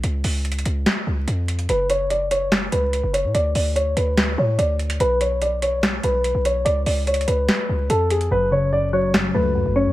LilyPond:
<<
  \new Staff \with { instrumentName = "Grand piano" } { \time 4/4 \key fis \minor \tempo 4 = 145 r1 | b'8 cis''8 d''8 cis''8 r8 b'4 cis''8 | d''8 d''8 cis''8 b'4 cis''8 d''8 r8 | b'8 cis''8 d''8 cis''8 r8 b'4 cis''8 |
d''8 d''8 cis''8 b'4. a'8 gis'8 | b'8 cis''8 d''8 cis''8 r8 b'4 cis''8 | }
  \new Staff \with { instrumentName = "Synth keys" } { \clef bass \time 4/4 \key fis \minor r1 | r1 | r1 | r1 |
r1 | fis,8 cis8 fis,8 fis8 fis,8 a8 fis,8 cis'8 | }
  \new Staff \with { instrumentName = "808-style bass" } { \clef bass \time 4/4 \key fis \minor cis,8 cis,4 cis,8 r8 cis,8 eis,4 | fis,,2~ fis,,8 cis,8. fis,,8 a,16 | d,8 d,4 d,4 a,8 d,4 | b,,2~ b,,8 b,,8. b,,8. |
cis,8 cis,4 cis,8 r8 cis,8 eis,4 | fis,,2~ fis,,8 cis,8. fis,,8 a,16 | }
  \new DrumStaff \with { instrumentName = "Drums" } \drummode { \time 4/4 hh8 hho8 \tuplet 3/2 { hh16 hh16 hh16 hh16 r16 r16 } <hh sn>4 hh8 hh16 hh16 | hh8 hh8 hh8 hh8 <hh sn>8 hh8 hh8 hh8 | hh8 hho8 hh8 hh8 <hh sn>4 hh8 hh16 hh16 | hh8 hh8 hh8 hh8 <hh sn>8 hh8 hh8 hh8 |
hh8 hho8 \tuplet 3/2 { hh16 hh16 hh16 hh16 r16 r16 } <hh sn>4 hh8 hh16 hh16 | r4 r4 sn4 r4 | }
>>